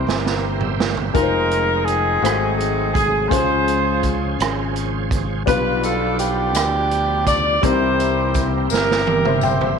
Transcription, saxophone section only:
0, 0, Header, 1, 2, 480
1, 0, Start_track
1, 0, Tempo, 719424
1, 769, Time_signature, 6, 3, 24, 8
1, 6532, End_track
2, 0, Start_track
2, 0, Title_t, "Saxophone section"
2, 0, Program_c, 0, 65
2, 766, Note_on_c, 0, 70, 71
2, 773, Note_on_c, 0, 63, 49
2, 1221, Note_off_c, 0, 70, 0
2, 1237, Note_on_c, 0, 68, 73
2, 1246, Note_off_c, 0, 63, 0
2, 1252, Note_on_c, 0, 60, 52
2, 1254, Note_on_c, 0, 63, 56
2, 1709, Note_off_c, 0, 68, 0
2, 1717, Note_on_c, 0, 68, 65
2, 1943, Note_off_c, 0, 60, 0
2, 1945, Note_off_c, 0, 63, 0
2, 1946, Note_off_c, 0, 68, 0
2, 1960, Note_on_c, 0, 68, 69
2, 2187, Note_off_c, 0, 68, 0
2, 2192, Note_on_c, 0, 72, 85
2, 2207, Note_on_c, 0, 68, 55
2, 2211, Note_on_c, 0, 65, 60
2, 2740, Note_off_c, 0, 72, 0
2, 2901, Note_off_c, 0, 68, 0
2, 2903, Note_off_c, 0, 65, 0
2, 3645, Note_on_c, 0, 65, 56
2, 3647, Note_on_c, 0, 62, 53
2, 3655, Note_on_c, 0, 71, 76
2, 3876, Note_off_c, 0, 71, 0
2, 3905, Note_on_c, 0, 69, 70
2, 4122, Note_off_c, 0, 62, 0
2, 4130, Note_on_c, 0, 62, 65
2, 4137, Note_off_c, 0, 69, 0
2, 4137, Note_on_c, 0, 67, 84
2, 4340, Note_off_c, 0, 65, 0
2, 4823, Note_off_c, 0, 62, 0
2, 4827, Note_off_c, 0, 67, 0
2, 4852, Note_on_c, 0, 74, 92
2, 5091, Note_off_c, 0, 74, 0
2, 5098, Note_on_c, 0, 72, 79
2, 5103, Note_on_c, 0, 67, 60
2, 5105, Note_on_c, 0, 64, 56
2, 5634, Note_off_c, 0, 72, 0
2, 5790, Note_off_c, 0, 67, 0
2, 5791, Note_off_c, 0, 64, 0
2, 5815, Note_on_c, 0, 67, 51
2, 5815, Note_on_c, 0, 70, 73
2, 5817, Note_on_c, 0, 64, 49
2, 6266, Note_off_c, 0, 70, 0
2, 6296, Note_on_c, 0, 72, 71
2, 6506, Note_off_c, 0, 64, 0
2, 6506, Note_off_c, 0, 67, 0
2, 6516, Note_off_c, 0, 72, 0
2, 6532, End_track
0, 0, End_of_file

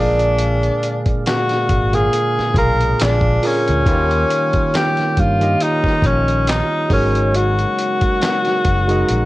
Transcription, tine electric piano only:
0, 0, Header, 1, 2, 480
1, 0, Start_track
1, 0, Tempo, 869565
1, 211, Time_signature, 4, 2, 24, 8
1, 5108, End_track
2, 0, Start_track
2, 0, Title_t, "Tine electric piano"
2, 0, Program_c, 0, 4
2, 0, Note_on_c, 0, 46, 85
2, 0, Note_on_c, 0, 58, 76
2, 0, Note_on_c, 0, 68, 74
2, 0, Note_on_c, 0, 74, 92
2, 0, Note_on_c, 0, 77, 82
2, 74, Control_c, 0, 64, 127
2, 884, Note_off_c, 0, 46, 0
2, 885, Note_off_c, 0, 58, 0
2, 887, Note_off_c, 0, 77, 0
2, 890, Note_off_c, 0, 68, 0
2, 891, Note_off_c, 0, 74, 0
2, 1062, Note_on_c, 0, 46, 70
2, 1067, Note_on_c, 0, 58, 67
2, 1070, Note_on_c, 0, 65, 71
2, 1075, Note_on_c, 0, 68, 66
2, 1080, Note_on_c, 0, 77, 77
2, 1393, Note_off_c, 0, 46, 0
2, 1395, Note_off_c, 0, 58, 0
2, 1397, Note_off_c, 0, 65, 0
2, 1399, Note_off_c, 0, 68, 0
2, 1402, Note_off_c, 0, 77, 0
2, 1408, Note_on_c, 0, 46, 67
2, 1412, Note_on_c, 0, 58, 65
2, 1415, Note_on_c, 0, 65, 64
2, 1419, Note_on_c, 0, 68, 68
2, 1423, Note_on_c, 0, 77, 85
2, 1866, Note_off_c, 0, 46, 0
2, 1868, Note_off_c, 0, 58, 0
2, 1870, Note_off_c, 0, 65, 0
2, 1872, Note_off_c, 0, 68, 0
2, 1874, Note_off_c, 0, 77, 0
2, 1889, Note_on_c, 0, 46, 74
2, 1893, Note_on_c, 0, 58, 71
2, 1897, Note_on_c, 0, 65, 63
2, 1901, Note_on_c, 0, 68, 69
2, 1905, Note_on_c, 0, 70, 85
2, 2119, Note_off_c, 0, 46, 0
2, 2121, Note_off_c, 0, 58, 0
2, 2123, Note_off_c, 0, 65, 0
2, 2124, Note_off_c, 0, 68, 0
2, 2126, Note_off_c, 0, 70, 0
2, 2129, Note_on_c, 0, 51, 95
2, 2133, Note_on_c, 0, 58, 86
2, 2137, Note_on_c, 0, 65, 88
2, 2139, Control_c, 0, 64, 0
2, 2141, Note_on_c, 0, 67, 85
2, 2144, Note_on_c, 0, 71, 82
2, 2178, Note_off_c, 0, 71, 0
2, 2180, Note_on_c, 0, 73, 107
2, 2244, Control_c, 0, 64, 127
2, 2933, Note_off_c, 0, 51, 0
2, 2935, Note_off_c, 0, 58, 0
2, 2937, Note_off_c, 0, 65, 0
2, 2939, Note_off_c, 0, 67, 0
2, 2958, Note_off_c, 0, 73, 0
2, 2981, Note_on_c, 0, 51, 68
2, 2985, Note_on_c, 0, 58, 63
2, 2988, Note_on_c, 0, 65, 63
2, 2992, Note_on_c, 0, 67, 70
2, 2997, Note_on_c, 0, 75, 82
2, 3808, Note_on_c, 0, 56, 86
2, 3810, Note_off_c, 0, 51, 0
2, 3812, Note_off_c, 0, 58, 0
2, 3813, Note_off_c, 0, 65, 0
2, 3813, Note_on_c, 0, 63, 76
2, 3815, Note_off_c, 0, 67, 0
2, 3816, Note_on_c, 0, 66, 82
2, 3818, Note_off_c, 0, 75, 0
2, 3818, Control_c, 0, 64, 0
2, 3822, Note_on_c, 0, 70, 70
2, 3823, Note_on_c, 0, 73, 96
2, 3916, Control_c, 0, 64, 127
2, 4723, Note_off_c, 0, 56, 0
2, 4726, Note_off_c, 0, 63, 0
2, 4727, Note_off_c, 0, 66, 0
2, 4730, Note_off_c, 0, 70, 0
2, 4731, Note_off_c, 0, 73, 0
2, 4900, Note_on_c, 0, 56, 87
2, 4904, Note_on_c, 0, 63, 79
2, 4908, Note_on_c, 0, 66, 82
2, 4913, Note_on_c, 0, 70, 74
2, 4916, Note_on_c, 0, 75, 93
2, 5108, Note_off_c, 0, 56, 0
2, 5108, Note_off_c, 0, 63, 0
2, 5108, Note_off_c, 0, 66, 0
2, 5108, Note_off_c, 0, 70, 0
2, 5108, Note_off_c, 0, 75, 0
2, 5108, End_track
0, 0, End_of_file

